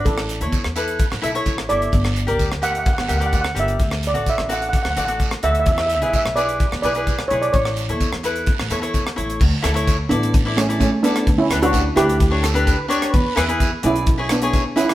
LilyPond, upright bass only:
\new Staff \with { instrumentName = "Upright bass" } { \clef bass \time 4/4 \key d \major \tempo 4 = 128 a,,8. e,8 e,4 a,,16 b,,8 a,,8 g,,8 | g,,8. d,8 d,4 g,,16 d,4 g,,8 | d,8. a,,8 a,,4 d,16 a,,4 d,8 | e,8. b,,8 b,,4 e,16 b,,4 b,,8 |
a,,8. e,8 e,4 a,,16 e,4 a,,8 | d,16 r16 d,4 a,,2 r8 | d,16 r16 d,4 d,2 r8 | e,16 r16 e,4 b,,2 r8 | }